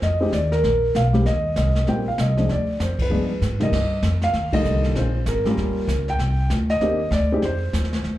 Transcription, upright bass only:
0.01 F2
0.32 D#2
0.63 A#1
0.95 B1
1.26 D#2
1.57 C2
1.87 A#1
2.18 C2
2.49 D2
2.80 F2
3.10 G2
3.41 G#2
3.72 G2
4.02 F2
4.33 D#2
4.65 C2
4.96 A#1
5.26 G#1
5.57 D#2
5.87 C#2
6.19 C2
6.50 D2
6.80 D#2
7.11 D2
7.42 F2
7.73 D#2
8.04 D2

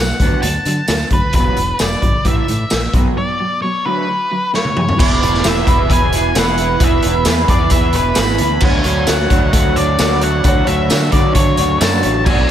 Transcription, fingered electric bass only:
Already playing: B1
0.20 D2
0.43 D2
0.65 D3
0.88 D2
1.11 D2
1.34 E1
1.57 E1
1.81 E1
2.03 G#1
2.25 A1
2.50 A2
2.72 A#1
2.93 B1
4.99 E1
5.22 E1
5.45 E1
5.67 E1
5.90 E1
6.36 E1
6.80 E1
7.04 E1
7.26 E2
7.48 E2
7.71 E2
7.94 E1
8.17 G#1
8.40 D2
8.62 D2
8.85 D2
9.09 D2
9.30 D2
9.53 D2
10.00 D2
10.44 D2
10.67 D2
10.90 D3
11.13 D3
11.35 D3
11.59 D2
11.81 F#2
12.04 A1
12.27 B1

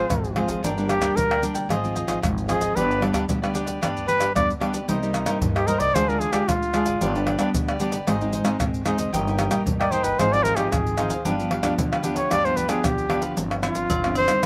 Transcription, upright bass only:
0.10 G#1
0.47 G#1
0.63 G1
1.01 D2
1.16 D2
1.54 D2
1.69 G#1
2.07 G#1
2.22 G#1
2.60 G#1
2.76 G1
3.13 D2
3.29 D2
3.66 D2
3.82 D2
4.20 G1
4.35 F2
4.60 D2
4.88 C2
5.26 G2
5.41 G2
5.79 C2
5.94 D2
6.33 D2
6.48 D2
6.86 G#1
7.01 G1
7.54 D2
7.91 G1
8.07 G#1
8.45 G#1
8.60 G#1
8.98 F#1
9.13 G1
9.66 A#1
10.04 G1
10.19 G#1
10.57 G#1
10.72 G#1
11.10 D2
11.25 G1
11.63 D2
11.79 D2
12.16 D2
12.31 D2
12.57 D2
12.85 B1
13.10 G1
13.37 G1
13.75 G1
13.91 G1
14.28 D#2

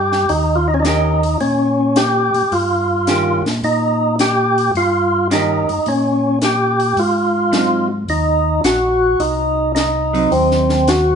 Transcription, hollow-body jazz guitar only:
0.84 D#3 A#3 C#4 G4
3.07 D#3 A#3 C#4 G4
5.30 D#3 A#3 C#4 G4
7.51 F#3 C4 D#4
10.13 F#3 C4 D#4

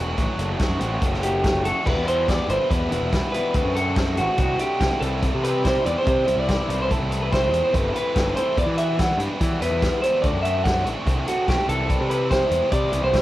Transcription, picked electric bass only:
Already playing: E1
0.17 A1
0.37 F#1
0.69 F#2
0.80 A1
1.02 F#1
1.53 F#1
1.86 E1
1.96 E2
2.48 G1
2.70 E2
2.90 E1
3.01 E1
3.54 D2
3.65 F#2
4.18 A1
4.38 C2
4.80 C2
5.01 C2
5.35 C3
5.86 E2
6.07 C3
6.28 C2
6.37 C2
6.68 C2
6.99 C2
7.52 E2
7.73 G1
8.16 G1
8.57 E2
8.66 E3
9.18 G2
9.41 E3
9.61 E2
9.71 E2
10.24 D2
10.32 F#2
10.85 A1
11.06 C2
11.48 B1
11.68 C2
12.00 C3
12.51 E2
12.72 C3
12.93 C2
13.03 C2

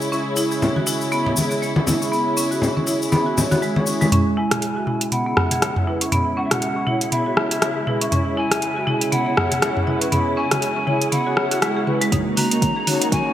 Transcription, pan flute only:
4.37 G#5
5.12 F#5
6.37 F#5
6.45 E5
6.52 F#5
7.12 E5
8.37 G#5
9.12 F#5
10.37 G#5
11.12 F#5
12.37 A#5
13.12 G#5

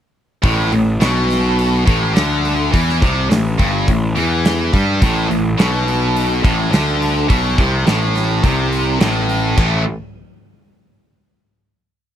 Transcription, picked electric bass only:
0.44 A1
0.73 A1
1.01 B1
1.88 A1
2.17 D2
2.74 E2
3.02 C2
3.31 A1
3.60 G1
3.88 A1
4.17 E2
4.74 G2
5.02 A1
5.30 A1
5.59 B1
6.44 A1
6.73 D2
7.30 B1
7.58 C2
7.87 A1
8.44 C2
9.01 A1
9.58 A1

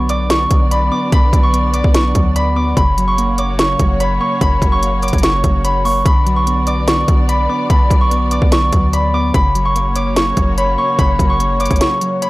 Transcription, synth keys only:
Already playing: D3 F#3 B3
0.10 D5
0.30 D3
0.51 F#3
0.71 D5
0.92 B3
1.12 D3
1.33 F#3
1.53 B3
1.74 D5
1.95 D3
2.15 F#3
2.36 D5
2.56 B3
2.77 C#3
2.98 F#3
3.18 A#3
3.38 C#5
3.59 C#3
3.79 F#3
4.00 C#5
4.21 A#3
4.41 C#3
4.62 F#3
4.82 A#3
5.03 C#5
5.23 C#3
5.44 F#3
5.65 C#5
5.85 A#3
6.06 D3
6.26 F#3
6.47 B3
6.67 D5
6.88 D3
7.08 F#3
7.29 D5
7.49 B3
7.70 D3
7.90 F#3
8.11 B3
8.32 D5
8.52 D3
8.73 F#3
8.93 D5
9.14 B3
9.34 C#3
9.55 F#3
9.76 A#3
9.96 C#5
10.16 C#3
10.37 F#3
10.58 C#5
10.78 A#3
10.99 C#3
11.19 F#3
11.40 A#3
11.60 C#5
11.81 C#3
12.02 F#3
12.22 C#5

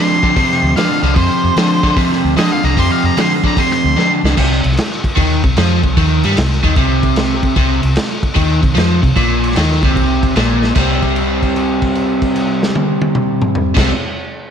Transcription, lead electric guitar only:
Already playing: C6
0.76 F5
1.03 F5
1.15 C5
2.37 D#5
2.52 F5
2.65 A#5
2.79 C6
2.92 F5
3.06 A#5
3.21 C6
3.47 A#5
3.60 C6
3.73 C6

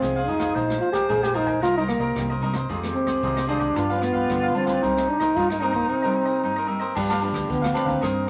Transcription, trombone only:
Already playing: C4
0.28 D#4
0.81 F4
0.92 G4
1.09 G#4
1.23 G4
1.36 D#4
1.63 F4
1.77 D#4
1.88 A#3
2.95 C4
3.48 D4
4.01 B3
4.56 C4
5.09 D4
5.21 D#4
5.36 F4
5.51 D#4
5.63 C4
5.75 A#3
5.91 C4
6.97 G3
7.50 B3
7.76 C4

